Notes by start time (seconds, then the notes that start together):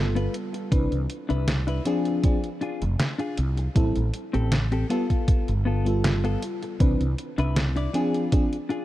Already playing: G1 G3 B3 F4 A4
0.15 B3 F4 B4, closed hi-hat
0.34 closed hi-hat
0.53 muted clean electric guitar stroke, closed hi-hat
0.71 C2 E3 C4 D4 B4, kick, closed hi-hat
0.92 C2, closed hi-hat
1.10 closed hi-hat
1.29 C2 D4 E4 B4, closed hi-hat
1.48 snare, closed hi-hat
1.67 D4 E4 B4, closed hi-hat
1.85 F3 C4 D4 F4 G#4, closed hi-hat
2.05 closed hi-hat
2.23 F3 C4 D4 G#4, kick, closed hi-hat
2.44 closed hi-hat
2.61 D4 F4 G#4, closed hi-hat
2.82 F1, closed hi-hat
2.99 muted clean electric guitar stroke, snare, closed hi-hat
3.18 D4 F4 G#4, closed hi-hat
3.37 C2, closed hi-hat
3.57 muted clean electric guitar stroke, closed hi-hat
3.75 A1 G3 C4 E4 A4, kick, closed hi-hat
3.96 A1, closed hi-hat
4.14 closed hi-hat
4.33 A1 C4 G4 A4, closed hi-hat
4.52 snare, closed hi-hat
4.72 C4 G4 A4, closed hi-hat
4.89 G3 B3 F4 A4, closed hi-hat
5.10 kick, closed hi-hat
5.28 muted fretless electric bass stroke, kick, closed hi-hat
5.48 G1, closed hi-hat
5.65 B3 F4 A4
5.85 G3 B3 F4 A4, closed hi-hat
6.04 muted clean electric guitar stroke, snare, closed hi-hat
6.24 B3 F4 A4, closed hi-hat
6.42 closed hi-hat
6.63 muted clean electric guitar stroke, closed hi-hat
6.79 C2 E3 C4 D4 B4, kick, closed hi-hat
7.01 C2, closed hi-hat
7.18 closed hi-hat
7.38 C2 D4 E4 B4, closed hi-hat
7.56 snare, closed hi-hat
7.76 D4 E4 D5, closed hi-hat
7.93 F3 C4 D4 F4 G#4, closed hi-hat
8.14 closed hi-hat
8.32 F3 C4 D4 G#4, kick, closed hi-hat
8.53 closed hi-hat
8.69 D4 F4 G#4, closed hi-hat